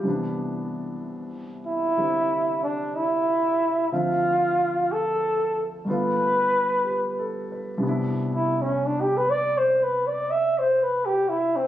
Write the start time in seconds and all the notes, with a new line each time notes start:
Already playing: G4
0.03 C2 C3 E3
0.08 B3 D4
1.67 E4
1.97 D3 G3 C4 E4
2.63 D4
2.96 E4
3.92 D2 D3 F3 C4 F4 E5
4.92 A4
5.85 G2 D3 A3 B3
5.90 F4 B4
6.85 G4
7.19 A4
7.52 B4
7.78 C2 C3
7.83 B3 D4
7.88 E4
8.35 E4
8.62 C#4
8.86 D4
9.01 G4
9.17 B4
9.30 D5
9.58 C5
9.83 B4
10.07 D5
10.31 E5
10.59 C5
10.83 B4
11.06 G4
11.29 E4
11.56 C4